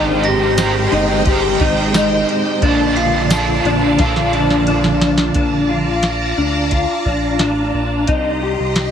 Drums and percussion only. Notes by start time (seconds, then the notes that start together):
0.24 ride
0.58 snare, ride, tambourine
0.92 ride
1.25 kick, ride
1.60 kick, ride
1.94 snare, ride, tambourine
2.29 ride
2.62 kick, ride
2.97 ride
3.30 snare, ride, tambourine
3.65 ride
3.99 kick, snare, ride
4.16 snare
4.33 ride
4.50 snare
4.67 ride
4.84 snare
5.01 snare, ride
5.18 snare
5.34 kick, closed hi-hat
6.03 snare, closed hi-hat
6.71 kick, closed hi-hat
7.06 kick
7.39 snare, closed hi-hat
8.07 kick, closed hi-hat
8.76 snare, closed hi-hat